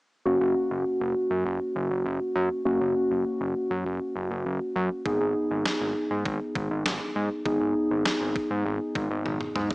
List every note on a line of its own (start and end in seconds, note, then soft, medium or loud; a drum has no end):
0.26 0.39 F#1 medium
0.26 2.62 A#3 medium
0.26 2.62 C#4 medium
0.26 2.62 F#4 medium
0.40 0.54 F#1 loud
0.70 0.84 F#1 medium
1.00 1.14 F#1 loud
1.30 1.44 F#2 medium
1.45 1.59 F#1 loud
1.75 1.89 F#1 medium
1.90 2.04 F#1 medium
2.05 2.19 F#1 loud
2.35 2.49 F#2 loud
2.65 2.79 F#1 medium
2.65 5.02 A#3 medium
2.65 5.02 C#4 medium
2.65 5.02 F#4 medium
2.81 2.94 F#1 medium
3.11 3.24 F#1 medium
3.41 3.54 F#1 medium
3.71 3.84 F#2 medium
3.85 3.99 F#1 loud
4.16 4.29 F#1 loud
4.31 4.44 F#1 loud
4.46 4.59 F#1 loud
4.76 4.89 F#2 loud
5.06 5.19 G#1 loud
5.06 7.42 B3 medium
5.06 7.42 D#4 medium
5.06 7.42 G#4 medium
5.06 kick loud
5.21 5.34 G#1 loud
5.51 5.64 G#1 loud
5.66 snare loud
5.81 5.94 G#1 loud
6.11 6.24 G#2 medium
6.25 6.39 G#1 loud
6.25 kick medium
6.55 6.69 G#1 medium
6.55 kick medium
6.71 6.84 G#1 medium
6.86 6.99 G#1 loud
6.86 snare loud
7.16 7.29 G#2 medium
7.46 7.59 G#1 medium
7.46 9.75 B3 medium
7.46 9.75 D#4 medium
7.46 9.75 G#4 medium
7.46 kick medium
7.61 7.74 G#1 medium
7.91 8.04 G#1 medium
8.05 snare loud
8.21 8.34 G#1 medium
8.36 kick medium
8.51 8.64 G#2 medium
8.66 8.79 G#1 loud
8.95 9.09 G#1 medium
8.95 kick medium
9.11 9.24 G#1 loud
9.26 9.39 G#1 loud
9.26 high tom medium
9.41 mid tom medium
9.56 9.69 G#2 loud
9.56 mid tom medium
9.71 floor tom medium